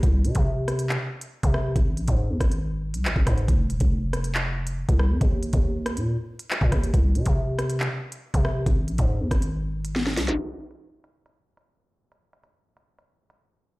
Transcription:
<<
  \new Staff \with { instrumentName = "808-style bass" } { \clef bass \time 4/4 \key ees \mixolydian \tempo 4 = 139 c,8 c16 c4. r4 c8. | aes,,8 bes,,16 aes,8 ees,16 aes,,4~ aes,,16 c,16 aes,,16 aes,,16 aes,8 | f,,8 ees,,16 f,,2~ f,,8 c,8 f,16 | ees,8. ees,4 bes,8 r4 bes,16 ees,8 |
c,8 c16 c4. r4 c8. | aes,,8 bes,,16 aes,8 ees,16 aes,,2 c,16 aes,,16 | r1 | r1 | }
  \new DrumStaff \with { instrumentName = "Drums" } \drummode { \time 4/4 <hh bd>8 hh16 <hh bd>16 r8 <hh ss>16 hh16 hc8. hh16 r16 <hh bd>16 ss8 | <hh bd>8 hh16 <hh bd>16 r8 <hh bd ss>16 hh16 r8. hh16 hc16 bd16 <hh bd ss>16 hh16 | <hh bd>8 hh16 <hh bd>16 r8 <hh ss>16 hh16 hc8. hh16 r16 <hh bd>16 ss8 | <hh bd>8 hh16 <hh bd>16 r8 <hh ss>16 hh16 r8. hh16 hc16 bd16 <hh bd ss>16 hh16 |
<hh bd>8 hh16 <hh bd>16 r8 <hh ss>16 hh16 hc8. hh16 r16 <hh bd>16 ss8 | <hh bd>8 hh16 <hh bd>16 r8 <hh bd ss>16 hh16 r8. hh16 sn16 sn16 <hh sn>16 <hh sn>16 | hh8 hh16 hh16 r8 hh8 hh8. hh16 r4 | hh8 hh16 hh16 r8 hh8 hh8. hh16 r4 | }
>>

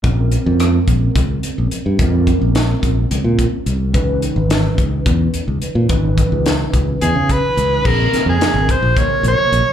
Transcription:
<<
  \new Staff \with { instrumentName = "Soprano saxophone" } { \time 7/8 \key des \lydian \tempo 4 = 108 r2. r8 | r2. r8 | r2. r8 | r2 aes'8 ces''4 |
bes'8. aes'8. c''8 des''8 des''4 | }
  \new Staff \with { instrumentName = "Tine electric piano" } { \time 7/8 \key des \lydian <aes c' des' bes'>2.~ <aes c' des' bes'>8 | <aes c' des' bes'>2.~ <aes c' des' bes'>8 | <fes des' ees' ces''>2.~ <fes des' ees' ces''>8 | <fes des' ees' ces''>2.~ <fes des' ees' ces''>8 |
<des bes c' aes'>8 <des bes c' bes'>4 r8 <c des bes bes'>4. | }
  \new Staff \with { instrumentName = "Fingered electric bass" } { \clef bass \time 7/8 \key des \lydian bes,,8. f,8. bes,,8 des,8 r16 bes,,16 r16 g,16 | f,8. bes,,8. bes,,8 des,16 bes,8 r16 c,8 | des,8. aes,,8. des,8 fes,8 r16 des,16 r16 bes,16 | aes,,8. des,8. des,8 fes,16 des8 r16 des,8 |
bes,,8 r16 f,16 r16 aes,,16 r16 bes,,16 r8 bes,,16 r16 bes,,16 r16 | }
  \new DrumStaff \with { instrumentName = "Drums" } \drummode { \time 7/8 <hh bd>8 hh8 <hh ss>8 <hh bd>8 <hh bd>8 hh8 hh8 | <hh bd>8 <hh bd>8 <hh sn>8 <hh bd>8 hh8 <hh bd>8 hh8 | <hh bd>8 hh8 <hh sn>8 <hh bd>8 <hh bd>8 hh8 hh8 | <hh bd>8 <hh bd>8 <hh sn>8 <hh bd>8 hh8 <hh bd>8 hh8 |
<cymc bd>8 <hh sn>8 <hh sn>8 <hh bd>8 <hh bd>8 hh8 hh8 | }
>>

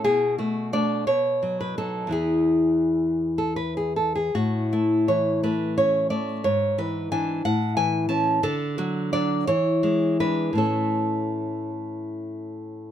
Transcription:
\new Staff \with { instrumentName = "Nylon-string guitar" } { \time 6/8 \key a \major \tempo 4. = 57 << { gis'8 fis'8 d''8 cis''8. b'16 a'8 | gis'4.~ gis'16 a'16 b'16 gis'16 a'16 gis'16 | fis'8 e'8 cis''8 b'8 cis''8 d''8 | cis''8 b'8 gis''8 fis''8 gis''8 a''8 |
a'8 fis'8 d''8 cis''4 b'8 | a'4. r4. | } \\ { b,8 a8 <a d'>8 b,8 fis8 <fis dis'>8 | <e, e e'>2. | a,8 a8 e8 a8 cis'8 a8 | gis,8 e8 <e d'>8 a,8 e8 <e cis'>8 |
d8 fis8 <fis d'>8 e8 gis8 <gis d'>8 | <a, a cis'>2. | } >> }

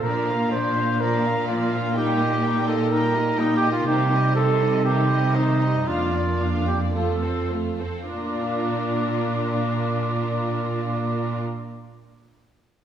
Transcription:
<<
  \new Staff \with { instrumentName = "Violin section" } { \time 4/4 \key bes \major \tempo 4 = 115 d''8 f''8 d''8 f''8 d''8 f''8 d''8 f''8 | g''8 ees''8 g''8 ees''8 g''8 ees''8 g''8 ees''8 | c''8 ees''8 c''8 ees''8 c''8 ees''8 c''8 ees''8 | f''8 d''8 f''8 d''8 a'8 c''8 a'8 c''8 |
bes'1~ | bes'1 | }
  \new Staff \with { instrumentName = "Trumpet" } { \time 4/4 \key bes \major bes'4 c''4 bes'4 f'4 | g'4. a'8 bes'4 \tuplet 3/2 { ees'8 g'8 f'8 } | g'4 a'4 g'4 ees'4 | f'4. g'8 a'4 r4 |
d''1~ | d''1 | }
  \new Staff \with { instrumentName = "Violin section" } { \time 4/4 \key bes \major d'8 f'8 d'8 f'8 d'8 f'8 d'8 f'8 | ees'8 g'8 ees'8 g'8 ees'8 g'8 ees'8 g'8 | ees'8 c'8 ees'8 c'8 ees'8 c'8 ees'8 c'8 | f'8 d'8 f'8 d'8 f'8 a'8 f'8 a'8 |
f'1~ | f'1 | }
  \new Staff \with { instrumentName = "French horn section" } { \time 4/4 \key bes \major << { d'1 | ees'1~ | ees'1 | d'2 f'4. r8 |
f'1~ | f'1 | } \\ { bes1~ | bes1 | g1 | bes2 c'4. r8 |
bes1~ | bes1 | } >> }
  \new Staff \with { instrumentName = "Viola section" } { \time 4/4 \key bes \major f8 bes8 f8 bes8 f8 bes8 f8 bes8 | g8 bes8 g8 bes8 g8 bes8 g8 bes8 | ees8 g8 ees8 g8 ees8 g8 ees8 g8 | d'8 bes8 d'8 bes8 a8 c'8 a8 c'8 |
d'1~ | d'1 | }
  \new Staff \with { instrumentName = "Cello section" } { \clef bass \time 4/4 \key bes \major bes,1~ | bes,1 | c1 | f,2.~ f,8 r8 |
bes,1~ | bes,1 | }
>>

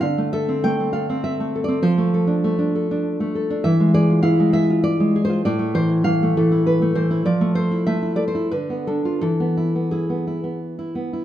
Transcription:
\new Staff \with { instrumentName = "Nylon-string guitar" } { \time 3/4 \key e \phrygian \tempo 4 = 99 << { f''8 e''8 g''8 f''8 \tuplet 3/2 { e''4 d''8 } | c''4. r4. | e''8 d''8 f''8 e''8 \tuplet 3/2 { d''4 c''8 } | d''8 c''8 f''8 a'8 b'8 c''8 |
d''8 c''8 \tuplet 3/2 { e''8. d''16 c''8 } b'8 a'8 | a'4 gis'4 r4 | } \\ { d16 a16 a'16 c'16 a16 c'16 a'16 c'8 a16 a'16 c'16 | f16 a16 a'16 d'16 a16 d'16 a'16 d'8 a16 a'16 d'16 | e16 gis16 gis'16 f'16 e'16 gis16 gis'16 f'8 gis16 gis'16 f'16 | a,16 a16 e16 e'16 e16 a16 e16 e'8 a16 e16 e'16 |
f16 a16 a'16 e'16 a16 e'16 a'16 e'16 d16 b16 d'16 f'16 | e16 b16 e'16 b16 e'16 b16 e'16 b8 e'16 b16 e'16 | } >> }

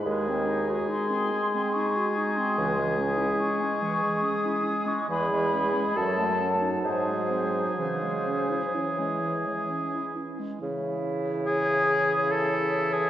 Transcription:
<<
  \new Staff \with { instrumentName = "Flute" } { \time 3/4 \key cis \minor \tempo 4 = 70 r4 bis''4 cis'''8. bis''16 | r4 cis'''4 dis'''8. cis'''16 | b''4 a''4 bis'4 | bis'4 cis''4 r4 |
cis''2. | }
  \new Staff \with { instrumentName = "Oboe" } { \time 3/4 \key cis \minor gis'2.~ | gis'2. | gis'4 a'8 r8 gis'4~ | gis'2~ gis'8 r8 |
r4 gis'4 a'8. gis'16 | }
  \new Staff \with { instrumentName = "Clarinet" } { \time 3/4 \key cis \minor gis16 bis16 dis'16 fis'16 dis'16 bis16 gis16 bis16 dis'16 fis'16 dis'16 bis16 | e16 gis16 cis'16 e'16 cis'16 gis16 e16 gis16 cis'16 e'16 cis'16 gis16 | e16 gis16 cis'16 gis16 fis16 a16 cis'16 dis'16 fis16 gis16 bis16 dis'16 | e16 gis16 cis'16 e'16 cis'16 gis16 e16 gis16 cis'16 e'16 cis'16 gis16 |
e'2. | }
  \new Staff \with { instrumentName = "French horn" } { \clef bass \time 3/4 \key cis \minor gis2.~ | gis2. | gis4 fis2~ | fis8 r8 e4. r8 |
e2. | }
  \new Staff \with { instrumentName = "Bassoon" } { \clef bass \time 3/4 \key cis \minor dis,4 r2 | cis,4 r2 | e,4 fis,4 gis,4 | cis4 r2 |
cis2. | }
>>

